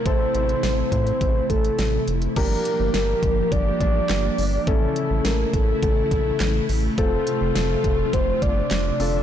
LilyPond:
<<
  \new Staff \with { instrumentName = "Soft synth lead" } { \time 4/4 \key a \phrygian \tempo 4 = 104 c''4. c''4 a'4 r8 | bes'4 bes'4 d''8 d''4. | a'4 bes'8 a'8 a'8 a'4 r8 | a'4 a'4 c''8 d''4. | }
  \new Staff \with { instrumentName = "Grand piano" } { \time 4/4 \key a \phrygian <c' e' a'>1 | <d' g' bes'>1 | <cis' e' a'>1 | <c' f' a'>2.~ <c' f' a'>8 <d' f' a'>8 | }
  \new Staff \with { instrumentName = "String machine" } { \time 4/4 \key a \phrygian << { <c e'>1 | <f g'>1 | <cis e'>1 | <c f'>2.~ <c f'>8 <d e''>8 | } \\ { a1 | bes1 | a1~ | a2.~ a8 f8 | } >> }
  \new Staff \with { instrumentName = "Analog synth bass" } { \clef bass \time 4/4 \key a \phrygian a,,8 a,,8 a,,8 a,8 a,,8 a,,8 a,,8 f,,8 | g,,8 r16 g,,16 g,,8 g,,8 g,,8 a,,8 g,,8 g,,8 | a,,8 r16 a,,16 a,,8 a,,8 a,,8 bes,,8 a,,8 a,,8 | f,,8 r16 f,,16 f,,8 f,,8 f,,8 g,,8 f,,8 f,,8 | }
  \new DrumStaff \with { instrumentName = "Drums" } \drummode { \time 4/4 <hh bd>8 hh16 hh16 <hh sn>8 <hh bd>16 hh16 <hh bd>8 <hh bd>16 hh16 <hh sn>8 hh16 hh16 | <cymc hh bd>8 hh8 <hh sn>8 <hh bd>8 <hh bd>8 <hh bd>8 <hc hh sn>8 hho8 | <hh bd>8 hh8 <hh sn>8 <hh bd>8 <hh bd>8 <hh bd>8 <hc hh sn>8 hho8 | <hh bd>8 hh8 <hh sn>8 <hh bd>8 <hh bd>8 <hh bd>8 <hc hh sn>8 hho8 | }
>>